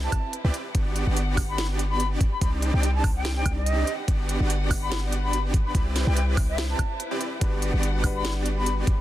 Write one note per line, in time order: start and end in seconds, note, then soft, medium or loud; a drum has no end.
0.00 0.10 C4 medium
0.00 0.73 C4 medium
0.00 0.73 E4 medium
0.00 0.71 B4 medium
0.00 0.33 A5 medium
0.12 kick medium
0.12 closed hi-hat medium
0.12 high woodblock medium
0.33 closed hi-hat medium
0.44 0.51 C2 loud
0.44 0.52 C4 medium
0.44 0.52 E4 medium
0.44 0.52 G4 medium
0.44 0.52 B4 medium
0.44 0.52 D5 medium
0.54 closed hi-hat medium
0.75 1.05 G1 loud
0.75 5.71 G3 medium
0.75 1.04 B3 medium
0.75 2.19 B3 medium
0.75 1.04 D4 medium
0.75 1.04 F#4 medium
0.75 1.04 G4 medium
0.75 1.04 D5 medium
0.75 2.19 F#5 medium
0.75 kick loud
0.75 closed hi-hat medium
0.96 closed hi-hat medium
1.07 2.18 G1 loud
1.07 2.20 B3 medium
1.07 2.19 D4 medium
1.07 2.20 F#4 medium
1.07 2.19 G4 medium
1.07 2.20 D5 medium
1.17 closed hi-hat medium
1.37 kick medium
1.37 open hi-hat medium
1.37 high woodblock medium
1.49 1.64 B5 loud
1.58 snare loud
1.58 closed hi-hat medium
1.79 closed hi-hat medium
1.90 2.06 B5 loud
2.00 closed hi-hat medium
2.21 3.86 C4 medium
2.21 kick loud
2.21 closed hi-hat medium
2.32 2.38 B5 medium
2.41 2.71 C2 medium
2.41 2.71 C4 medium
2.41 2.71 D4 medium
2.41 2.71 D#4 medium
2.41 2.71 G4 medium
2.41 2.71 D5 medium
2.41 2.49 B5 medium
2.41 kick loud
2.41 closed hi-hat medium
2.62 closed hi-hat medium
2.74 3.44 C2 medium
2.74 3.43 C4 medium
2.74 3.43 D4 medium
2.74 3.43 D#4 medium
2.74 3.43 G4 medium
2.74 3.43 D5 loud
2.74 2.80 G5 medium
2.83 2.90 G5 medium
2.83 closed hi-hat medium
2.95 3.10 A5 medium
3.04 kick loud
3.04 open hi-hat medium
3.04 high woodblock medium
3.15 3.31 G5 loud
3.25 snare loud
3.25 closed hi-hat medium
3.36 3.52 G5 medium
3.46 3.84 C2 medium
3.46 3.86 C4 medium
3.46 3.86 D4 medium
3.46 3.86 D#4 medium
3.46 3.86 G4 medium
3.46 3.86 D5 medium
3.46 kick medium
3.46 closed hi-hat medium
3.46 high woodblock medium
3.57 3.92 D#5 loud
3.66 closed hi-hat medium
3.87 8.83 B4 medium
3.87 5.73 F#5 medium
3.87 closed hi-hat medium
4.08 4.38 G1 medium
4.08 4.38 B3 medium
4.08 4.38 D4 medium
4.08 4.38 F#4 medium
4.08 4.38 G4 medium
4.08 4.38 D5 medium
4.08 kick loud
4.08 closed hi-hat medium
4.29 closed hi-hat medium
4.40 5.73 G1 loud
4.40 5.72 B3 medium
4.40 5.73 D4 medium
4.40 5.73 F#4 medium
4.40 5.72 G4 medium
4.40 5.72 D5 loud
4.50 closed hi-hat medium
4.71 kick medium
4.71 open hi-hat medium
4.71 high woodblock medium
4.82 4.97 B5 loud
4.92 snare loud
4.92 closed hi-hat medium
5.12 closed hi-hat medium
5.23 5.39 B5 loud
5.33 closed hi-hat medium
5.54 kick loud
5.54 closed hi-hat medium
5.65 5.71 B5 medium
5.75 6.05 C2 loud
5.75 6.04 C4 medium
5.75 7.40 C4 medium
5.75 6.04 E4 medium
5.75 7.40 E4 medium
5.75 6.04 G4 medium
5.75 6.04 B4 medium
5.75 6.04 D5 medium
5.75 5.82 B5 medium
5.75 kick loud
5.75 closed hi-hat medium
5.96 snare medium
5.96 closed hi-hat medium
6.07 6.75 C2 loud
6.07 6.77 C4 medium
6.07 6.77 E4 medium
6.07 6.77 G4 medium
6.07 6.77 B4 medium
6.07 6.77 D5 loud
6.07 6.13 G5 medium
6.16 6.24 G5 medium
6.16 closed hi-hat medium
6.37 kick loud
6.37 open hi-hat loud
6.37 high woodblock medium
6.49 6.64 E5 loud
6.58 snare loud
6.58 closed hi-hat medium
6.69 7.00 A5 medium
6.79 kick medium
6.79 closed hi-hat medium
6.79 high woodblock medium
7.00 closed hi-hat medium
7.11 7.19 C4 medium
7.11 7.19 E4 medium
7.11 7.19 G4 medium
7.11 7.19 B4 medium
7.11 7.19 D5 medium
7.21 closed hi-hat medium
7.40 7.71 G1 loud
7.40 8.00 G3 medium
7.40 9.01 G3 medium
7.40 7.71 B3 medium
7.40 8.01 D4 medium
7.40 7.71 D4 medium
7.40 7.71 F#4 medium
7.40 8.02 F#4 medium
7.40 7.71 G4 medium
7.40 8.03 B4 loud
7.40 7.71 D5 medium
7.40 8.86 F#5 medium
7.40 kick loud
7.40 closed hi-hat medium
7.62 closed hi-hat medium
7.73 8.84 G1 loud
7.73 8.86 B3 medium
7.73 8.86 D4 medium
7.73 8.86 F#4 medium
7.73 8.86 G4 medium
7.73 8.86 D5 medium
7.83 closed hi-hat medium
8.02 8.85 G3 medium
8.02 8.86 D4 medium
8.02 8.86 F#5 medium
8.02 kick medium
8.02 open hi-hat loud
8.02 high woodblock medium
8.06 8.87 B4 loud
8.15 8.31 B5 medium
8.25 snare loud
8.25 closed hi-hat medium
8.46 closed hi-hat medium
8.57 8.73 B5 medium
8.66 closed hi-hat medium
8.87 9.01 C4 medium
8.87 kick loud
8.87 closed hi-hat medium